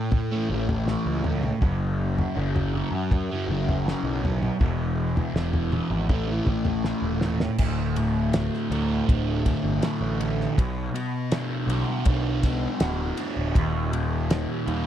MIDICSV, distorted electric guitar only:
0, 0, Header, 1, 3, 480
1, 0, Start_track
1, 0, Tempo, 746269
1, 1040, Time_signature, 4, 2, 24, 8
1, 9561, End_track
2, 0, Start_track
2, 0, Title_t, "Distorted electric guitar"
2, 0, Program_c, 0, 30
2, 0, Note_on_c, 0, 45, 66
2, 199, Note_off_c, 0, 45, 0
2, 200, Note_on_c, 0, 57, 77
2, 223, Note_on_c, 0, 52, 57
2, 323, Note_on_c, 0, 45, 72
2, 335, Note_off_c, 0, 52, 0
2, 337, Note_off_c, 0, 57, 0
2, 337, Note_on_c, 0, 52, 73
2, 345, Note_on_c, 0, 57, 81
2, 435, Note_off_c, 0, 57, 0
2, 443, Note_on_c, 0, 57, 62
2, 460, Note_off_c, 0, 52, 0
2, 463, Note_on_c, 0, 52, 54
2, 545, Note_off_c, 0, 45, 0
2, 553, Note_on_c, 0, 45, 79
2, 558, Note_off_c, 0, 52, 0
2, 561, Note_on_c, 0, 52, 84
2, 566, Note_off_c, 0, 57, 0
2, 574, Note_on_c, 0, 57, 99
2, 790, Note_off_c, 0, 45, 0
2, 798, Note_on_c, 0, 45, 72
2, 811, Note_off_c, 0, 52, 0
2, 813, Note_on_c, 0, 52, 73
2, 817, Note_off_c, 0, 57, 0
2, 825, Note_on_c, 0, 57, 75
2, 917, Note_off_c, 0, 57, 0
2, 923, Note_off_c, 0, 52, 0
2, 1025, Note_off_c, 0, 45, 0
2, 1033, Note_on_c, 0, 42, 90
2, 1048, Note_on_c, 0, 49, 93
2, 1057, Note_on_c, 0, 54, 95
2, 1386, Note_off_c, 0, 54, 0
2, 1394, Note_on_c, 0, 54, 73
2, 1410, Note_off_c, 0, 49, 0
2, 1417, Note_on_c, 0, 49, 56
2, 1508, Note_off_c, 0, 42, 0
2, 1516, Note_on_c, 0, 42, 84
2, 1524, Note_off_c, 0, 49, 0
2, 1531, Note_on_c, 0, 49, 92
2, 1532, Note_off_c, 0, 54, 0
2, 1540, Note_on_c, 0, 54, 91
2, 1751, Note_off_c, 0, 42, 0
2, 1759, Note_on_c, 0, 42, 69
2, 1767, Note_off_c, 0, 49, 0
2, 1775, Note_off_c, 0, 54, 0
2, 1775, Note_on_c, 0, 49, 77
2, 1783, Note_on_c, 0, 54, 75
2, 1880, Note_off_c, 0, 54, 0
2, 1882, Note_off_c, 0, 49, 0
2, 2121, Note_off_c, 0, 42, 0
2, 2126, Note_on_c, 0, 54, 73
2, 2147, Note_on_c, 0, 49, 58
2, 2234, Note_on_c, 0, 42, 74
2, 2240, Note_off_c, 0, 49, 0
2, 2248, Note_on_c, 0, 49, 75
2, 2251, Note_off_c, 0, 54, 0
2, 2259, Note_on_c, 0, 54, 74
2, 2349, Note_off_c, 0, 54, 0
2, 2357, Note_on_c, 0, 54, 65
2, 2374, Note_off_c, 0, 49, 0
2, 2381, Note_on_c, 0, 49, 52
2, 2470, Note_off_c, 0, 42, 0
2, 2477, Note_on_c, 0, 42, 77
2, 2483, Note_off_c, 0, 49, 0
2, 2491, Note_on_c, 0, 49, 80
2, 2492, Note_off_c, 0, 54, 0
2, 2500, Note_on_c, 0, 54, 97
2, 2709, Note_off_c, 0, 42, 0
2, 2717, Note_on_c, 0, 42, 80
2, 2718, Note_off_c, 0, 49, 0
2, 2725, Note_on_c, 0, 49, 73
2, 2730, Note_off_c, 0, 54, 0
2, 2737, Note_on_c, 0, 54, 80
2, 2834, Note_off_c, 0, 54, 0
2, 2841, Note_off_c, 0, 49, 0
2, 2945, Note_off_c, 0, 42, 0
2, 2953, Note_on_c, 0, 40, 90
2, 2961, Note_on_c, 0, 47, 100
2, 2972, Note_on_c, 0, 52, 104
2, 3312, Note_off_c, 0, 52, 0
2, 3320, Note_on_c, 0, 52, 80
2, 3335, Note_off_c, 0, 47, 0
2, 3343, Note_on_c, 0, 47, 62
2, 3430, Note_off_c, 0, 40, 0
2, 3438, Note_on_c, 0, 40, 79
2, 3442, Note_off_c, 0, 47, 0
2, 3449, Note_on_c, 0, 47, 88
2, 3454, Note_off_c, 0, 52, 0
2, 3462, Note_on_c, 0, 52, 95
2, 3670, Note_off_c, 0, 40, 0
2, 3677, Note_on_c, 0, 40, 66
2, 3686, Note_off_c, 0, 47, 0
2, 3694, Note_off_c, 0, 52, 0
2, 3694, Note_on_c, 0, 47, 77
2, 3701, Note_on_c, 0, 52, 78
2, 3796, Note_off_c, 0, 52, 0
2, 3802, Note_off_c, 0, 47, 0
2, 3906, Note_off_c, 0, 40, 0
2, 3916, Note_on_c, 0, 45, 90
2, 3928, Note_on_c, 0, 52, 91
2, 3941, Note_on_c, 0, 57, 92
2, 4028, Note_off_c, 0, 57, 0
2, 4035, Note_on_c, 0, 57, 75
2, 4053, Note_off_c, 0, 52, 0
2, 4061, Note_on_c, 0, 52, 61
2, 4143, Note_off_c, 0, 45, 0
2, 4150, Note_on_c, 0, 45, 66
2, 4161, Note_off_c, 0, 52, 0
2, 4168, Note_off_c, 0, 57, 0
2, 4168, Note_on_c, 0, 52, 73
2, 4176, Note_on_c, 0, 57, 73
2, 4266, Note_off_c, 0, 57, 0
2, 4274, Note_on_c, 0, 57, 69
2, 4288, Note_off_c, 0, 52, 0
2, 4296, Note_on_c, 0, 52, 51
2, 4388, Note_off_c, 0, 45, 0
2, 4396, Note_on_c, 0, 45, 88
2, 4399, Note_off_c, 0, 52, 0
2, 4407, Note_on_c, 0, 52, 89
2, 4411, Note_off_c, 0, 57, 0
2, 4418, Note_on_c, 0, 57, 95
2, 4624, Note_off_c, 0, 45, 0
2, 4632, Note_on_c, 0, 45, 80
2, 4638, Note_off_c, 0, 52, 0
2, 4645, Note_on_c, 0, 52, 80
2, 4650, Note_off_c, 0, 57, 0
2, 4657, Note_on_c, 0, 57, 78
2, 4755, Note_off_c, 0, 57, 0
2, 4758, Note_off_c, 0, 52, 0
2, 4862, Note_off_c, 0, 45, 0
2, 4878, Note_on_c, 0, 38, 78
2, 5125, Note_on_c, 0, 45, 70
2, 5368, Note_on_c, 0, 50, 67
2, 5607, Note_on_c, 0, 57, 67
2, 5827, Note_off_c, 0, 50, 0
2, 5835, Note_on_c, 0, 50, 74
2, 6065, Note_off_c, 0, 45, 0
2, 6073, Note_on_c, 0, 45, 69
2, 6078, Note_off_c, 0, 38, 0
2, 6312, Note_off_c, 0, 57, 0
2, 6320, Note_on_c, 0, 57, 70
2, 6550, Note_off_c, 0, 50, 0
2, 6558, Note_on_c, 0, 50, 68
2, 6796, Note_off_c, 0, 45, 0
2, 6798, Note_off_c, 0, 50, 0
2, 6799, Note_off_c, 0, 57, 0
2, 6805, Note_on_c, 0, 47, 74
2, 7036, Note_on_c, 0, 59, 75
2, 7281, Note_on_c, 0, 62, 73
2, 7528, Note_on_c, 0, 66, 68
2, 7764, Note_off_c, 0, 62, 0
2, 7771, Note_on_c, 0, 62, 73
2, 7997, Note_off_c, 0, 59, 0
2, 8001, Note_off_c, 0, 47, 0
2, 8005, Note_on_c, 0, 59, 70
2, 8235, Note_off_c, 0, 66, 0
2, 8243, Note_on_c, 0, 66, 68
2, 8471, Note_off_c, 0, 62, 0
2, 8479, Note_on_c, 0, 62, 76
2, 8709, Note_on_c, 0, 39, 77
2, 8718, Note_off_c, 0, 62, 0
2, 8720, Note_off_c, 0, 66, 0
2, 8721, Note_off_c, 0, 59, 0
2, 8949, Note_on_c, 0, 46, 72
2, 9192, Note_on_c, 0, 51, 70
2, 9428, Note_on_c, 0, 55, 68
2, 9561, Note_off_c, 0, 39, 0
2, 9561, Note_off_c, 0, 46, 0
2, 9561, Note_off_c, 0, 51, 0
2, 9561, Note_off_c, 0, 55, 0
2, 9561, End_track
3, 0, Start_track
3, 0, Title_t, "Muted distorted electric guitar strokes"
3, 925, Note_on_c, 9, 29, 48
3, 989, Note_off_c, 9, 29, 0
3, 1887, Note_on_c, 9, 29, 43
3, 1952, Note_off_c, 9, 29, 0
3, 2842, Note_on_c, 9, 29, 51
3, 2906, Note_off_c, 9, 29, 0
3, 3804, Note_on_c, 9, 29, 48
3, 3868, Note_off_c, 9, 29, 0
3, 4762, Note_on_c, 9, 29, 50
3, 4827, Note_off_c, 9, 29, 0
3, 9561, End_track
0, 0, End_of_file